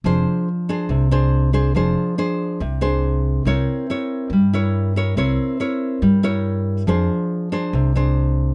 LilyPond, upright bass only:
\new Staff \with { instrumentName = "Upright bass" } { \clef bass \time 4/4 \key f \dorian \tempo 4 = 140 f,,8 r4. c,2 | f,,8 r4. c,2 | c,8 r4. g,2 | c,8 r4. g,2 |
f,8 r4. c,2 | }